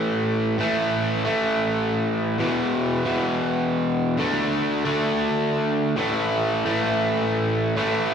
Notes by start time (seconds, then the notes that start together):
Already playing: A2 E3 A3
0.58 A2 E3 A3
1.25 A2 E3 A3
2.38 E2 B2 E3
3.05 E2 B2 E3
4.17 D3 A3 D4
4.85 D3 A3 D4
5.96 A2 E3 A3
6.66 A2 E3 A3
7.77 A2 E3 A3